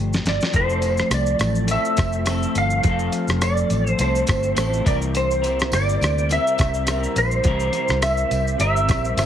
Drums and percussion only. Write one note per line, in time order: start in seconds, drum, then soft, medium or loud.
0.13 snare medium
0.13 shaker soft
0.26 snare medium
0.26 closed hi-hat medium
0.26 shaker medium
0.41 snare medium
0.41 shaker soft
0.54 kick loud
0.54 closed hi-hat medium
0.54 tambourine soft
0.54 shaker medium
0.70 shaker soft
0.82 closed hi-hat soft
0.82 tambourine soft
0.82 shaker soft
0.97 cross-stick medium
0.97 shaker soft
1.11 cross-stick medium
1.11 closed hi-hat medium
1.11 tambourine medium
1.11 shaker medium
1.26 shaker medium
1.39 cross-stick medium
1.39 closed hi-hat soft
1.39 tambourine soft
1.39 shaker medium
1.55 shaker soft
1.68 closed hi-hat medium
1.68 tambourine soft
1.68 shaker medium
1.85 shaker medium
1.97 kick medium
1.97 cross-stick loud
1.97 closed hi-hat medium
1.97 tambourine medium
1.97 shaker medium
2.13 shaker soft
2.26 cross-stick medium
2.26 closed hi-hat medium
2.26 tambourine medium
2.26 shaker medium
2.43 shaker medium
2.55 closed hi-hat medium
2.55 tambourine soft
2.55 shaker medium
2.70 shaker medium
2.83 kick loud
2.83 closed hi-hat medium
2.83 tambourine soft
2.83 shaker medium
2.99 shaker soft
3.12 closed hi-hat soft
3.12 shaker soft
3.28 cross-stick medium
3.28 shaker soft
3.42 cross-stick loud
3.42 closed hi-hat medium
3.42 tambourine medium
3.42 shaker medium
3.57 shaker medium
3.70 closed hi-hat soft
3.70 tambourine soft
3.70 shaker soft
3.87 shaker soft
3.99 closed hi-hat medium
3.99 tambourine soft
3.99 shaker medium
4.15 shaker medium
4.27 kick medium
4.27 cross-stick loud
4.27 closed hi-hat medium
4.27 tambourine medium
4.27 shaker medium
4.43 shaker soft
4.56 cross-stick medium
4.56 closed hi-hat medium
4.56 tambourine medium
4.56 shaker medium
4.73 shaker soft
4.86 kick loud
4.86 closed hi-hat medium
4.86 tambourine soft
4.86 shaker medium
5.02 shaker medium
5.15 closed hi-hat medium
5.15 tambourine soft
5.15 shaker medium
5.31 shaker soft
5.43 closed hi-hat soft
5.43 tambourine soft
5.43 shaker soft
5.60 cross-stick medium
5.60 shaker soft
5.72 cross-stick medium
5.72 closed hi-hat medium
5.72 tambourine medium
5.72 shaker medium
5.89 shaker medium
6.01 cross-stick medium
6.01 closed hi-hat soft
6.01 tambourine soft
6.01 shaker medium
6.18 shaker soft
6.29 closed hi-hat medium
6.29 tambourine soft
6.29 shaker medium
6.47 shaker medium
6.58 kick loud
6.58 cross-stick medium
6.58 closed hi-hat medium
6.58 tambourine medium
6.58 shaker medium
6.74 shaker medium
6.87 cross-stick medium
6.87 closed hi-hat medium
6.87 tambourine medium
6.87 shaker medium
7.03 shaker medium
7.16 closed hi-hat medium
7.16 tambourine soft
7.16 shaker medium
7.31 shaker medium
7.44 kick loud
7.44 closed hi-hat medium
7.44 shaker medium
7.60 shaker soft
7.73 closed hi-hat soft
7.73 shaker soft
7.88 cross-stick medium
7.88 shaker soft
8.02 cross-stick loud
8.02 closed hi-hat medium
8.02 tambourine medium
8.02 shaker medium
8.17 shaker medium
8.31 closed hi-hat soft
8.31 tambourine soft
8.31 shaker soft
8.47 shaker soft
8.60 closed hi-hat medium
8.60 tambourine soft
8.60 shaker medium
8.76 shaker medium
8.89 kick medium
8.89 cross-stick loud
8.89 closed hi-hat medium
8.89 tambourine medium
8.89 shaker medium
9.05 shaker medium
9.18 cross-stick medium
9.18 closed hi-hat medium
9.18 tambourine medium
9.18 shaker medium